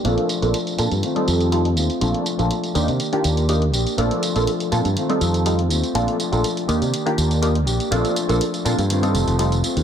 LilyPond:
<<
  \new Staff \with { instrumentName = "Analog polysynth" } { \time 4/4 \key bes \major \tempo 4 = 122 <bes c' d' f' a'>8 r16 <bes c' d' f' a'>16 r8 <bes c' d' f' a'>16 r8 <g c' ees' f' a'>8. <g c' ees' f' a'>16 r8. | <bes c' d' f' a'>8 r16 <bes c' d' f' a'>16 r8 <bes d' ees' f' g'>16 r8 <ees bes d' f' g'>8. <bes d' ees' f' g'>16 r8. | <bes c' d' f' a'>8 r16 <bes c' d' f' a'>16 r8 <bes c' d' f' a'>16 r8 <g c' ees' f' a'>8. <g c' ees' f' a'>16 r8. | <bes c' d' f' a'>8 r16 <bes c' d' f' a'>16 r8 <bes d' ees' f' g'>16 r8 <ees bes d' f' g'>8. <bes d' ees' f' g'>16 r8. |
<bes c' d' f' a'>8 r16 <bes c' d' f' a'>16 r8 <bes c' d' f' a'>16 r8 <g c' ees' f' a'>8. <g c' ees' f' a'>16 r8. | }
  \new Staff \with { instrumentName = "Clean electric guitar" } { \time 4/4 \key bes \major <f a d' f'>2 <ees a c' f'>4. <a c' f'>8 | <f a d' f'>4. <ees bes d' g'>2 <bes d' g'>8 | <f a d' f'>2 <ees a c' f'>4. <a c' f'>8 | <f a d' f'>4. <ees bes d' g'>2 <bes d' g'>8 |
<f a d' f'>2 <ees a c' f'>4. <a c' f'>8 | }
  \new Staff \with { instrumentName = "Fingered electric bass" } { \clef bass \time 4/4 \key bes \major bes,,16 r8 bes,,16 r8 bes,16 g,16 r8 f,4 ees,16 r16 | bes,,16 r8 bes,,16 r8 ees,16 c16 r8 ees,4 bes,,16 r16 | bes,,16 r8 bes,,16 r8 bes,16 g,16 r8 f,4 ees,16 r16 | bes,,16 r8 bes,,16 r8 ees,16 c16 r8 ees,4 bes,,16 r16 |
bes,,16 r8 bes,,16 r8 bes,16 g,8. f,,16 f,,8. r16 ees,16 | }
  \new DrumStaff \with { instrumentName = "Drums" } \drummode { \time 4/4 <hh tamb>16 hh16 <hh tamb>16 <hh tamb>16 <hh tamb>16 <hh tamb>16 <hh tamb>16 <hh tamb>16 <hh tamb>16 hh16 <hh tamb>16 <hh tamb>16 <hh tamb>16 hh16 <hh tamb>16 <hh tamb>16 | <hh tamb>16 hh16 <hh tamb>16 <hh tamb>16 <hh tamb>16 <hh tamb>16 <hh tamb>16 <hh tamb>16 <hh tamb>16 hh16 <hh tamb>16 <hh tamb>16 <hh tamb>16 hh16 <hh tamb>16 <hh tamb>16 | <hh tamb>16 hh16 <hh tamb>16 <hh tamb>16 <hh tamb>16 <hh tamb>16 <hh tamb>16 <hh tamb>16 <hh tamb>16 hh16 <hh tamb>16 <hh tamb>16 <hh tamb>16 hh16 <hh tamb>16 <hh tamb>16 | <hh tamb>16 hh16 <hh tamb>16 <hh tamb>16 <hh tamb>16 <hh tamb>16 <hh tamb>16 <hh tamb>16 <hh tamb>16 hh16 <hh tamb>16 <hh tamb>16 <hh tamb>16 hh16 <hh tamb>16 <hh tamb>16 |
<hh tamb>16 <hh tamb>16 <hh tamb>16 <hh tamb>16 <hh tamb>16 <hh tamb>16 <hh tamb>16 <hh tamb>16 <hh tamb>16 <hh tamb>16 <hh tamb>16 <hh tamb>16 <hh tamb>16 <hh tamb>16 <hh tamb>16 <hh tamb>16 | }
>>